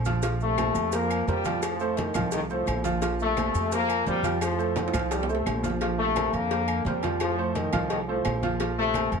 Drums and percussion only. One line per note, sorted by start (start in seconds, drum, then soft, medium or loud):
0.05 cowbell medium
0.05 high conga medium
0.05 maracas medium
0.22 cowbell loud
0.22 low agogo medium
0.22 maracas medium
0.40 high conga soft
0.40 maracas soft
0.58 cowbell medium
0.58 high conga loud
0.58 low agogo loud
0.58 claves medium
0.58 maracas soft
0.75 low agogo loud
0.75 maracas medium
0.92 cowbell loud
0.92 high conga soft
0.92 low agogo medium
0.92 maracas loud
1.10 high conga soft
1.10 low agogo loud
1.10 claves medium
1.10 maracas soft
1.28 cowbell medium
1.28 high conga loud
1.28 maracas soft
1.45 cowbell medium
1.45 high conga medium
1.45 low agogo medium
1.45 maracas medium
1.62 cowbell loud
1.62 high conga soft
1.62 low agogo loud
1.62 claves medium
1.62 maracas medium
1.80 high conga soft
1.80 maracas soft
1.97 cowbell medium
1.97 high conga loud
1.97 low agogo medium
1.97 maracas soft
2.14 cowbell medium
2.14 high conga soft
2.14 low conga loud
2.14 low agogo loud
2.14 claves medium
2.14 maracas medium
2.32 cowbell loud
2.32 high conga soft
2.32 low agogo medium
2.32 maracas loud
2.50 high conga soft
2.50 maracas soft
2.67 cowbell medium
2.67 low agogo loud
2.67 claves medium
2.67 maracas soft
2.84 cowbell medium
2.84 high conga medium
2.84 maracas medium
3.02 cowbell loud
3.02 low agogo medium
3.02 maracas medium
3.20 high conga soft
3.20 maracas soft
3.37 cowbell medium
3.37 high conga loud
3.37 low agogo loud
3.37 claves medium
3.37 maracas soft
3.55 low agogo medium
3.55 maracas medium
3.72 cowbell loud
3.72 high conga soft
3.72 low agogo medium
3.72 maracas loud
3.89 high conga soft
3.89 low agogo loud
3.89 claves medium
3.89 maracas soft
4.06 cowbell medium
4.06 high conga medium
4.06 maracas soft
4.23 cowbell medium
4.23 high conga medium
4.23 low agogo medium
4.23 maracas medium
4.41 cowbell loud
4.41 high conga soft
4.41 low agogo loud
4.41 claves medium
4.41 maracas medium
4.59 high conga soft
4.59 maracas soft
4.76 cowbell medium
4.76 high conga loud
4.76 high timbale medium
4.76 low agogo medium
4.76 maracas soft
4.88 high timbale loud
4.93 cowbell medium
4.93 high conga soft
4.93 low conga medium
4.93 low agogo loud
4.93 claves medium
4.93 maracas medium
4.99 high timbale medium
5.11 cowbell loud
5.11 high timbale loud
5.11 low agogo medium
5.11 maracas loud
5.23 low timbale loud
5.29 high conga soft
5.29 maracas soft
5.35 low timbale medium
5.46 cowbell medium
5.46 low timbale loud
5.46 low agogo loud
5.46 claves medium
5.46 maracas soft
5.64 cowbell medium
5.64 high conga medium
5.64 maracas medium
5.70 low timbale medium
5.81 cowbell loud
5.81 low agogo medium
5.99 high conga soft
6.16 cowbell medium
6.16 high conga loud
6.16 low agogo loud
6.16 claves medium
6.34 high conga soft
6.34 low agogo medium
6.51 cowbell loud
6.51 high conga soft
6.51 low agogo medium
6.68 high conga soft
6.68 low agogo loud
6.68 claves medium
6.86 cowbell medium
6.86 high conga medium
7.03 cowbell medium
7.03 high conga medium
7.03 low agogo medium
7.20 cowbell loud
7.20 high conga soft
7.20 low agogo loud
7.20 claves medium
7.38 high conga soft
7.55 cowbell medium
7.55 high conga medium
7.55 low agogo loud
7.73 cowbell medium
7.73 high conga soft
7.73 low conga medium
7.73 low agogo loud
7.73 claves medium
7.90 cowbell loud
7.90 high conga soft
7.90 low agogo medium
8.07 high conga soft
8.25 cowbell medium
8.25 high conga soft
8.25 low timbale medium
8.25 low agogo loud
8.25 claves medium
8.43 cowbell medium
8.43 high conga medium
8.60 cowbell loud
8.60 high conga soft
8.60 low agogo medium
8.77 high conga soft
8.94 cowbell medium
8.94 high conga loud
8.94 low agogo loud
8.94 claves medium
9.12 high conga soft
9.12 low agogo medium